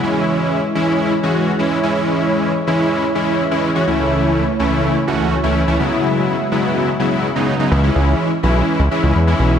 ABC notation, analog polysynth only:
X:1
M:4/4
L:1/16
Q:1/4=125
K:C#m
V:1 name="Analog polysynth" clef=bass
[E,G,CE]4- [E,G,CE] z [E,G,CE]3 z [E,G,CF]2 z [E,G,CE]2 [E,G,CE] | [E,G,CE]4- [E,G,CE] z [E,G,CE]3 z [E,G,CE]2 z [E,G,CE]2 [E,G,CF] | [C,,E,A,CE]4- [C,,E,A,CE] z [C,,E,A,CE]3 z [C,,E,A,CF]2 z [C,,E,A,CE]2 [C,,E,A,CE] | [C,F,G,B,E]4- [C,F,G,B,E] z [C,F,G,B,E]3 z [C,F,G,B,E]2 z [C,F,G,B,D]2 [C,F,G,B,D] |
[E,G,CE] [E,G,CE]4 z [E,G,CE]3 z [E,G,CE]2 z [E,G,CE]2 z |]